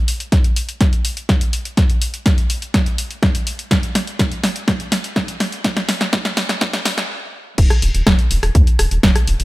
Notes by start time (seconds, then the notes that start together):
0.08 open hi-hat
0.20 closed hi-hat
0.32 kick, snare, closed hi-hat
0.44 closed hi-hat
0.56 open hi-hat
0.69 closed hi-hat
0.81 kick, snare, closed hi-hat
0.93 closed hi-hat
1.05 open hi-hat
1.17 closed hi-hat
1.29 kick, snare, closed hi-hat
1.41 closed hi-hat
1.53 open hi-hat
1.65 closed hi-hat
1.77 kick, snare, closed hi-hat
1.90 closed hi-hat
2.02 open hi-hat
2.14 closed hi-hat
2.26 kick, snare, closed hi-hat
2.38 closed hi-hat
2.50 open hi-hat
2.62 closed hi-hat
2.74 kick, snare, closed hi-hat
2.86 closed hi-hat
2.98 open hi-hat
3.11 closed hi-hat
3.23 kick, snare, closed hi-hat
3.35 closed hi-hat
3.47 open hi-hat
3.59 closed hi-hat
3.71 kick, snare, closed hi-hat
3.83 closed hi-hat
3.95 snare, open hi-hat
4.07 closed hi-hat
4.19 kick, snare, closed hi-hat
4.32 closed hi-hat
4.44 snare, open hi-hat
4.56 closed hi-hat
4.68 kick, snare, closed hi-hat
4.80 closed hi-hat
4.92 snare, open hi-hat
5.04 closed hi-hat
5.16 kick, snare, closed hi-hat
5.28 closed hi-hat
5.40 snare, open hi-hat
5.52 closed hi-hat
5.64 kick, snare, closed hi-hat
5.77 snare, closed hi-hat
5.89 snare, open hi-hat
6.01 snare, closed hi-hat
6.13 kick, snare, closed hi-hat
6.25 snare, closed hi-hat
6.37 snare, open hi-hat
6.49 snare, closed hi-hat
6.61 kick, snare, closed hi-hat
6.73 snare, closed hi-hat
6.85 snare, open hi-hat
6.98 snare, closed hi-hat
7.58 D#1, kick, closed hi-hat, crash
7.70 cross-stick, closed hi-hat
7.82 D#1, open hi-hat
7.95 D#1, closed hi-hat
8.07 D#1, kick, cross-stick, snare, closed hi-hat
8.19 closed hi-hat
8.31 D#1, open hi-hat
8.43 D#1, cross-stick, open hi-hat
8.55 D#2, kick, closed hi-hat
8.67 closed hi-hat
8.79 D#1, cross-stick, open hi-hat
8.91 D#1, closed hi-hat
9.03 D#1, kick, snare, closed hi-hat
9.16 cross-stick, closed hi-hat
9.28 D#1, open hi-hat
9.40 D#1, closed hi-hat